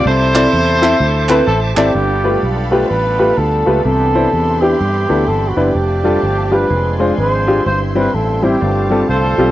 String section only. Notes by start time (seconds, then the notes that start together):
1.94 F5 G5 A5 B5
3.84 D5 E5 B5 C6
5.75 F5 G5 A5
6.70 F5 G#5 C6
7.65 C5 E5 G5
8.61 F5 A5